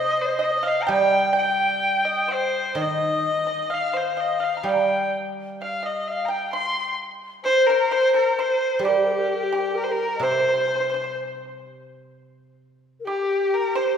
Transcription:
0.00 1.82 C3 soft
0.00 0.21 D#5 medium
0.00 0.23 D#5 loud
0.00 0.37 D#5 medium
0.20 0.43 C5 medium
0.20 0.45 C5 medium
0.39 0.62 D#5 medium
0.43 0.53 D#5 medium
0.43 0.69 D#5 medium
0.52 0.60 C5 medium
0.58 0.83 D#5 medium
0.63 0.86 F5 medium
0.68 0.85 F5 medium
0.81 0.91 A#5 medium
0.81 0.92 A#5 medium
0.87 3.70 G3 medium
0.87 1.31 G5 medium
0.87 1.35 G5 medium
0.87 1.36 G5 medium
1.33 2.01 G5 medium
1.33 1.99 G5 medium
1.38 2.35 G5 medium
2.05 2.27 D#5 medium
2.28 2.79 C5 medium
2.28 2.73 C5 medium
2.33 2.83 C5 medium
2.75 5.59 D#3 medium
2.75 3.43 D#5 medium
2.75 3.73 D#5 medium
2.81 3.75 D#5 medium
3.47 3.69 D#5 medium
3.70 3.92 F5 medium
3.70 4.67 F5 medium
3.70 3.99 F5 medium
3.93 4.16 C5 medium
3.93 4.22 C5 medium
4.17 4.40 D#5 medium
4.17 4.45 D#5 medium
4.40 4.56 F5 medium
4.44 4.70 F5 medium
4.57 4.64 A#5 soft
4.63 7.43 G3 soft
4.63 5.09 G5 medium
4.63 4.76 G5 medium
4.69 5.15 G5 medium
4.74 4.82 A#5 medium
4.81 5.14 G5 medium
5.61 5.85 F5 medium
5.61 5.82 F5 medium
5.61 5.87 F5 medium
5.83 6.26 D#5 medium
5.83 6.04 D#5 medium
5.83 6.09 D#5 medium
6.05 6.32 F5 medium
6.05 6.27 F5 medium
6.25 6.50 G5 medium
6.25 6.32 A#5 medium
6.30 6.52 G5 medium
6.30 6.53 G5 medium
6.53 6.95 C6 medium
7.44 7.87 C5 medium
7.44 7.68 C5 loud
7.44 7.66 C5 medium
7.67 7.94 A#4 medium
7.67 7.90 A#4 medium
7.90 8.33 C5 medium
7.90 8.12 C5 medium
7.90 8.14 C5 loud
8.14 8.35 A#4 medium
8.14 8.41 A#4 medium
8.35 8.82 C5 medium
8.35 8.80 C5 medium
8.40 8.84 C5 medium
8.79 11.62 G3 medium
8.79 8.90 G4 medium
8.85 9.49 G4 medium
8.85 9.79 G4 medium
8.85 8.98 A#4 medium
8.97 9.06 G4 medium
9.04 9.13 A#4 medium
9.12 9.21 G4 medium
9.19 9.30 A#4 medium
9.29 9.37 G4 medium
9.35 9.45 A#4 medium
9.43 9.77 G4 medium
9.52 10.17 G4 medium
9.75 9.88 A#4 medium
9.75 9.85 A#4 medium
9.83 9.93 C5 medium
9.89 10.12 A#4 medium
9.89 10.25 A#4 medium
10.16 13.06 C3 medium
10.16 10.23 D#5 soft
10.21 11.16 C5 medium
10.21 10.28 C5 medium
10.21 11.17 C5 medium
10.31 10.37 C5 soft
10.39 10.44 C5 medium
10.48 10.53 C5 soft
10.54 10.59 C5 soft
10.61 10.66 C5 soft
10.68 10.73 C5 soft
10.76 10.79 C5 soft
10.80 10.87 C5 soft
10.90 10.93 C5 soft
10.94 11.01 C5 soft
11.04 11.10 C5 soft
13.00 13.07 A#4 medium
13.05 13.97 G4 medium
13.05 13.56 G4 medium
13.05 13.72 G4 medium
13.54 13.78 A#4 medium
13.75 13.97 C5 medium
13.75 13.96 C5 medium

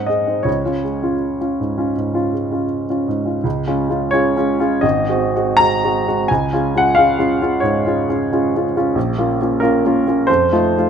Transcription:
0.00 0.27 C4 soft
0.00 0.27 D#4 soft
0.00 0.49 F#5 medium
0.07 0.39 G#3 soft
0.07 0.46 D#5 medium
0.27 0.45 C4 soft
0.27 0.45 D#4 soft
0.43 0.64 C#2 soft
0.43 3.07 C#5 medium
0.65 0.83 C#4 soft
0.65 0.83 F4 soft
0.84 1.14 G#3 soft
1.03 1.37 C#4 soft
1.03 1.37 F4 soft
1.41 1.58 C#4 soft
1.41 1.58 F4 soft
1.60 1.90 G#2 soft
1.78 1.95 C#4 soft
1.78 1.95 F4 soft
1.97 2.15 G#2 soft
2.14 2.32 C#4 soft
2.14 2.32 F4 soft
2.33 2.63 G#3 soft
2.51 2.85 C#4 soft
2.51 2.86 F4 soft
2.90 3.07 C#4 soft
2.90 3.07 F4 soft
3.08 3.37 G#2 soft
3.26 3.42 C#4 soft
3.26 3.42 F4 soft
3.44 3.67 C#2 medium
3.67 3.88 G#3 soft
3.67 3.88 C#4 soft
3.67 3.88 F4 soft
3.89 4.10 G#3 soft
3.89 4.11 C#4 soft
3.89 4.11 F4 soft
4.11 4.34 G#3 soft
4.11 4.34 C#4 soft
4.11 4.34 F4 soft
4.11 4.82 C#5 medium
4.37 4.57 G#3 soft
4.37 4.57 C#4 soft
4.37 4.58 F4 soft
4.59 4.81 G#3 soft
4.59 4.81 C#4 soft
4.59 4.81 F4 medium
4.81 5.07 G#1 medium
4.81 5.58 D#5 medium
5.09 5.32 G#3 soft
5.09 5.32 C4 soft
5.09 5.32 F#4 soft
5.35 5.57 G#3 soft
5.35 5.57 C4 soft
5.35 5.58 F#4 soft
5.57 5.80 G#3 soft
5.57 5.81 C4 soft
5.57 5.81 F#4 soft
5.57 6.28 A#5 medium
5.84 6.04 G#3 soft
5.84 6.05 C4 soft
5.84 6.05 F#4 soft
6.08 6.28 G#3 soft
6.08 6.28 C4 soft
6.08 6.28 F#4 soft
6.28 6.52 C#2 medium
6.28 6.80 G#5 medium
6.53 6.73 G#3 soft
6.53 6.73 C#4 soft
6.53 6.73 F4 medium
6.75 6.95 G#3 soft
6.75 6.95 C#4 soft
6.75 6.95 F4 soft
6.75 6.95 F#5 medium
6.95 7.16 G#3 soft
6.95 7.16 C#4 soft
6.95 7.17 F4 medium
6.95 7.62 F5 medium
7.18 7.38 G#3 soft
7.18 7.39 C#4 soft
7.18 7.39 F4 soft
7.42 7.61 G#3 soft
7.42 7.61 C#4 soft
7.42 7.61 F4 medium
7.60 7.84 G#2 medium
7.60 8.63 C#5 medium
7.86 8.06 G#3 soft
7.86 8.06 C#4 soft
7.86 8.06 F4 medium
8.09 8.29 G#3 soft
8.09 8.29 C#4 soft
8.09 8.30 F4 soft
8.32 8.52 G#3 soft
8.32 8.52 C#4 soft
8.32 8.52 F4 soft
8.56 8.74 G#3 soft
8.56 8.74 C#4 soft
8.56 8.75 F4 soft
8.76 8.95 G#3 soft
8.76 8.95 C#4 soft
8.76 8.95 F4 soft
8.95 9.16 A#1 medium
9.18 9.37 A#3 soft
9.18 9.37 C#4 soft
9.18 9.38 F4 soft
9.41 9.60 A#3 soft
9.41 9.60 C#4 soft
9.41 9.60 F4 soft
9.60 9.81 A#3 soft
9.60 9.82 C#4 soft
9.60 9.82 F4 medium
9.60 10.27 A#4 medium
9.85 10.04 A#3 soft
9.85 10.04 C#4 soft
9.85 10.05 F4 soft
10.07 10.27 A#3 soft
10.07 10.27 C#4 soft
10.07 10.27 F4 soft
10.27 10.52 F2 medium
10.27 10.89 C5 medium
10.52 10.75 A3 soft
10.52 10.75 D#4 soft
10.52 10.75 F4 soft
10.77 10.89 A3 soft
10.77 10.89 D#4 soft
10.77 10.89 F4 soft

